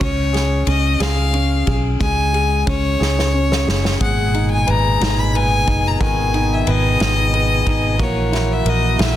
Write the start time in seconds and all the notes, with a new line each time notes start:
0.00 C#2 C#4 C#5, kick, ride
0.33 G#4, snare, ride
0.67 C#2 C#4 D#5, ride
1.00 C#2 G#4 F5, snare, ride
1.33 C#4, ride
1.66 B1 G#4, kick, ride
2.00 C#2 G#3 G#5, kick, ride
2.33 G#4, ride
2.66 C#2 C#4 C#5, kick, ride
3.00 C#2 G#4, snare
3.19 snare
3.34 C#4
3.52 snare
3.67 F#1 G#4, snare
3.85 snare
4.01 G#1 A#2 B2 G#3 G#4 F#5, kick, ride
4.34 D#4, ride
4.52 G#5
4.67 G#1 B4 A#5, ride
5.01 G#1 D#4, snare, ride
5.19 B5
5.34 B4 G#5, ride
5.67 F#1 D#4, kick, ride
5.87 A#5
6.00 G#1 D#3 B3 G#5, kick, ride
6.34 D#4, ride
6.53 E5
6.67 G#1 B4 D#5, ride
7.00 G#1 D#4, snare, ride
7.33 B4, ride
7.66 G#1 D#4, kick, ride
7.99 A#1 E3 A#3 F#4 C#5, kick, ride
8.32 E4, snare, ride
8.52 E5
8.65 A#1 A#4 D#5, ride
8.99 A#1 E4 E5, snare, ride